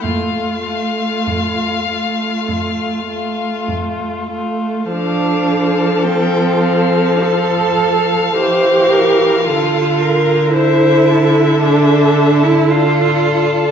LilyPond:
<<
  \new Staff \with { instrumentName = "Violin" } { \time 4/4 \key f \major \tempo 4 = 53 f''2. r4 | f''4 g''8 f''2~ f''8~ | f''4 e''2 d''4 | }
  \new Staff \with { instrumentName = "Violin" } { \time 4/4 \key f \major f'8 f'4 f'4 f'4 f'8 | a'2. c''8 bes'8 | a'8 bes'8 c''8 a'4. a'4 | }
  \new Staff \with { instrumentName = "Cello" } { \time 4/4 \key f \major f,4 f,4 f,4 f,4 | d'4 c'4 a'4 g'4 | f'4 e'4 d'8. e'16 f'4 | }
  \new Staff \with { instrumentName = "Viola" } { \time 4/4 \key f \major a8 a4 a4 a4 a8 | f2. e4 | d1 | }
>>